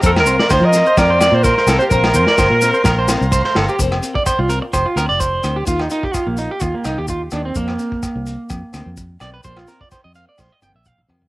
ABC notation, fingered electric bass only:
X:1
M:4/4
L:1/16
Q:1/4=127
K:Bb
V:1 name="Fingered electric bass" clef=bass
F,,2 C,, z D,, F,2 z F,,3 B,,2 z C,, z | B,,,2 F,, z G,,, B,,2 z B,,,3 C,,2 z G,,, z | F,,,2 z3 C,,2 z F,,, z D,, F,,,3 D,,2 | E,,2 z3 B,,,2 z E,, z C,, E,,3 E,,2 |
F,,2 z3 C,,2 z F,, z D,, F,,3 =B,,,2 | B,,,2 z3 F,,2 z B,,, z G,,, B,,,3 F,,2 |]